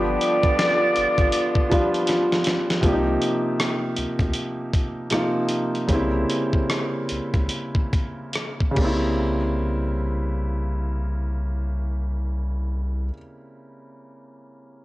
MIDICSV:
0, 0, Header, 1, 6, 480
1, 0, Start_track
1, 0, Tempo, 751880
1, 1805, Time_signature, 4, 2, 24, 8
1, 2769, Tempo, 782269
1, 4209, Tempo, 828729
1, 5169, Tempo, 868307
1, 5649, Tempo, 882353
1, 8717, End_track
2, 0, Start_track
2, 0, Title_t, "Muted trumpet"
2, 0, Program_c, 0, 59
2, 0, Note_on_c, 0, 74, 104
2, 1318, Note_off_c, 0, 74, 0
2, 8717, End_track
3, 0, Start_track
3, 0, Title_t, "Saxophone section"
3, 0, Program_c, 1, 65
3, 0, Note_on_c, 1, 50, 66
3, 0, Note_on_c, 1, 59, 68
3, 0, Note_on_c, 1, 65, 73
3, 1540, Note_off_c, 1, 50, 0
3, 1540, Note_off_c, 1, 59, 0
3, 1540, Note_off_c, 1, 65, 0
3, 8717, End_track
4, 0, Start_track
4, 0, Title_t, "Grand piano"
4, 0, Program_c, 2, 0
4, 0, Note_on_c, 2, 53, 60
4, 0, Note_on_c, 2, 55, 56
4, 0, Note_on_c, 2, 59, 52
4, 0, Note_on_c, 2, 62, 54
4, 0, Note_on_c, 2, 67, 69
4, 6, Control_c, 2, 64, 127
4, 1053, Note_off_c, 2, 53, 0
4, 1059, Note_off_c, 2, 55, 0
4, 1065, Note_off_c, 2, 59, 0
4, 1069, Note_off_c, 2, 62, 0
4, 1075, Note_off_c, 2, 67, 0
4, 1083, Note_on_c, 2, 53, 59
4, 1091, Note_on_c, 2, 55, 52
4, 1094, Note_on_c, 2, 59, 50
4, 1101, Note_on_c, 2, 62, 50
4, 1106, Note_on_c, 2, 65, 66
4, 1795, Note_on_c, 2, 48, 64
4, 1796, Note_off_c, 2, 53, 0
4, 1805, Note_on_c, 2, 53, 63
4, 1807, Note_off_c, 2, 55, 0
4, 1809, Note_off_c, 2, 59, 0
4, 1812, Note_off_c, 2, 62, 0
4, 1814, Note_off_c, 2, 65, 0
4, 1814, Control_c, 2, 64, 0
4, 1818, Note_on_c, 2, 58, 58
4, 1828, Note_on_c, 2, 62, 49
4, 1835, Note_on_c, 2, 67, 77
4, 1867, Note_off_c, 2, 62, 0
4, 1867, Note_on_c, 2, 63, 57
4, 1913, Control_c, 2, 64, 127
4, 3211, Note_off_c, 2, 48, 0
4, 3216, Note_off_c, 2, 53, 0
4, 3222, Note_off_c, 2, 58, 0
4, 3230, Note_off_c, 2, 67, 0
4, 3240, Note_on_c, 2, 48, 48
4, 3243, Note_off_c, 2, 63, 0
4, 3244, Note_on_c, 2, 53, 50
4, 3249, Note_on_c, 2, 58, 50
4, 3252, Note_on_c, 2, 63, 45
4, 3258, Note_on_c, 2, 65, 54
4, 3713, Note_on_c, 2, 49, 64
4, 3720, Note_off_c, 2, 48, 0
4, 3721, Note_off_c, 2, 58, 0
4, 3721, Note_on_c, 2, 55, 57
4, 3722, Note_off_c, 2, 53, 0
4, 3726, Note_off_c, 2, 63, 0
4, 3729, Note_off_c, 2, 65, 0
4, 3729, Control_c, 2, 64, 0
4, 3730, Note_on_c, 2, 58, 57
4, 3741, Note_on_c, 2, 60, 61
4, 3750, Note_on_c, 2, 64, 69
4, 3826, Control_c, 2, 64, 127
4, 5366, Note_off_c, 2, 49, 0
4, 5374, Note_on_c, 2, 49, 64
4, 5384, Note_off_c, 2, 55, 0
4, 5390, Note_off_c, 2, 58, 0
4, 5393, Note_on_c, 2, 55, 63
4, 5395, Note_off_c, 2, 60, 0
4, 5399, Note_off_c, 2, 64, 0
4, 5411, Note_on_c, 2, 58, 63
4, 5416, Control_c, 2, 64, 0
4, 5431, Note_on_c, 2, 60, 53
4, 5449, Note_on_c, 2, 64, 64
4, 5501, Control_c, 2, 64, 127
4, 5657, Control_c, 2, 64, 0
4, 5736, Control_c, 2, 64, 127
4, 7735, Note_off_c, 2, 49, 0
4, 7753, Note_off_c, 2, 55, 0
4, 7772, Note_off_c, 2, 58, 0
4, 7791, Note_off_c, 2, 60, 0
4, 7809, Note_off_c, 2, 64, 0
4, 8717, End_track
5, 0, Start_track
5, 0, Title_t, "Analog synth bass"
5, 0, Program_c, 3, 38
5, 0, Note_on_c, 3, 31, 97
5, 108, Note_off_c, 3, 31, 0
5, 623, Note_on_c, 3, 32, 50
5, 678, Note_off_c, 3, 32, 0
5, 760, Note_on_c, 3, 32, 96
5, 841, Note_off_c, 3, 32, 0
5, 1813, Note_on_c, 3, 36, 98
5, 2026, Note_off_c, 3, 36, 0
5, 2541, Note_on_c, 3, 38, 48
5, 2597, Note_off_c, 3, 38, 0
5, 2681, Note_on_c, 3, 38, 83
5, 2763, Note_off_c, 3, 38, 0
5, 3725, Note_on_c, 3, 36, 105
5, 3943, Note_off_c, 3, 36, 0
5, 4458, Note_on_c, 3, 37, 44
5, 4513, Note_off_c, 3, 37, 0
5, 4592, Note_on_c, 3, 37, 81
5, 4675, Note_off_c, 3, 37, 0
5, 5410, Note_on_c, 3, 36, 79
5, 7770, Note_off_c, 3, 36, 0
5, 8717, End_track
6, 0, Start_track
6, 0, Title_t, "Drums"
6, 135, Note_on_c, 9, 42, 65
6, 198, Note_off_c, 9, 42, 0
6, 277, Note_on_c, 9, 36, 90
6, 277, Note_on_c, 9, 42, 29
6, 341, Note_off_c, 9, 36, 0
6, 341, Note_off_c, 9, 42, 0
6, 376, Note_on_c, 9, 38, 113
6, 376, Note_on_c, 9, 42, 85
6, 440, Note_off_c, 9, 38, 0
6, 440, Note_off_c, 9, 42, 0
6, 611, Note_on_c, 9, 42, 51
6, 675, Note_off_c, 9, 42, 0
6, 753, Note_on_c, 9, 36, 86
6, 758, Note_on_c, 9, 42, 33
6, 817, Note_off_c, 9, 36, 0
6, 822, Note_off_c, 9, 42, 0
6, 845, Note_on_c, 9, 42, 90
6, 908, Note_off_c, 9, 42, 0
6, 991, Note_on_c, 9, 36, 80
6, 1055, Note_off_c, 9, 36, 0
6, 1095, Note_on_c, 9, 36, 86
6, 1099, Note_on_c, 9, 42, 63
6, 1159, Note_off_c, 9, 36, 0
6, 1163, Note_off_c, 9, 42, 0
6, 1240, Note_on_c, 9, 42, 32
6, 1304, Note_off_c, 9, 42, 0
6, 1322, Note_on_c, 9, 42, 80
6, 1335, Note_on_c, 9, 38, 49
6, 1386, Note_off_c, 9, 42, 0
6, 1399, Note_off_c, 9, 38, 0
6, 1483, Note_on_c, 9, 38, 54
6, 1547, Note_off_c, 9, 38, 0
6, 1560, Note_on_c, 9, 42, 71
6, 1577, Note_on_c, 9, 38, 74
6, 1623, Note_off_c, 9, 42, 0
6, 1641, Note_off_c, 9, 38, 0
6, 1724, Note_on_c, 9, 42, 31
6, 1725, Note_on_c, 9, 38, 70
6, 1788, Note_off_c, 9, 42, 0
6, 1789, Note_off_c, 9, 38, 0
6, 1806, Note_on_c, 9, 36, 104
6, 1809, Note_on_c, 9, 42, 78
6, 1870, Note_off_c, 9, 36, 0
6, 1873, Note_off_c, 9, 42, 0
6, 2053, Note_on_c, 9, 42, 60
6, 2117, Note_off_c, 9, 42, 0
6, 2297, Note_on_c, 9, 37, 103
6, 2297, Note_on_c, 9, 42, 72
6, 2360, Note_off_c, 9, 37, 0
6, 2360, Note_off_c, 9, 42, 0
6, 2531, Note_on_c, 9, 42, 55
6, 2595, Note_off_c, 9, 42, 0
6, 2676, Note_on_c, 9, 36, 75
6, 2683, Note_on_c, 9, 42, 30
6, 2740, Note_off_c, 9, 36, 0
6, 2747, Note_off_c, 9, 42, 0
6, 2767, Note_on_c, 9, 42, 73
6, 2829, Note_off_c, 9, 42, 0
6, 3012, Note_on_c, 9, 36, 76
6, 3016, Note_on_c, 9, 42, 57
6, 3074, Note_off_c, 9, 36, 0
6, 3077, Note_off_c, 9, 42, 0
6, 3237, Note_on_c, 9, 42, 73
6, 3252, Note_on_c, 9, 37, 91
6, 3299, Note_off_c, 9, 42, 0
6, 3313, Note_off_c, 9, 37, 0
6, 3474, Note_on_c, 9, 42, 61
6, 3535, Note_off_c, 9, 42, 0
6, 3635, Note_on_c, 9, 42, 25
6, 3696, Note_off_c, 9, 42, 0
6, 3719, Note_on_c, 9, 36, 95
6, 3721, Note_on_c, 9, 42, 80
6, 3781, Note_off_c, 9, 36, 0
6, 3782, Note_off_c, 9, 42, 0
6, 3971, Note_on_c, 9, 42, 61
6, 4032, Note_off_c, 9, 42, 0
6, 4115, Note_on_c, 9, 36, 67
6, 4176, Note_off_c, 9, 36, 0
6, 4216, Note_on_c, 9, 37, 93
6, 4216, Note_on_c, 9, 42, 66
6, 4274, Note_off_c, 9, 37, 0
6, 4274, Note_off_c, 9, 42, 0
6, 4444, Note_on_c, 9, 42, 49
6, 4502, Note_off_c, 9, 42, 0
6, 4588, Note_on_c, 9, 36, 76
6, 4593, Note_on_c, 9, 42, 28
6, 4646, Note_off_c, 9, 36, 0
6, 4650, Note_off_c, 9, 42, 0
6, 4676, Note_on_c, 9, 42, 77
6, 4734, Note_off_c, 9, 42, 0
6, 4826, Note_on_c, 9, 36, 69
6, 4884, Note_off_c, 9, 36, 0
6, 4930, Note_on_c, 9, 36, 78
6, 4933, Note_on_c, 9, 42, 54
6, 4988, Note_off_c, 9, 36, 0
6, 4991, Note_off_c, 9, 42, 0
6, 5163, Note_on_c, 9, 42, 68
6, 5177, Note_on_c, 9, 37, 82
6, 5219, Note_off_c, 9, 42, 0
6, 5232, Note_off_c, 9, 37, 0
6, 5315, Note_on_c, 9, 36, 62
6, 5370, Note_off_c, 9, 36, 0
6, 5403, Note_on_c, 9, 49, 59
6, 5405, Note_on_c, 9, 36, 78
6, 5458, Note_off_c, 9, 49, 0
6, 5460, Note_off_c, 9, 36, 0
6, 8717, End_track
0, 0, End_of_file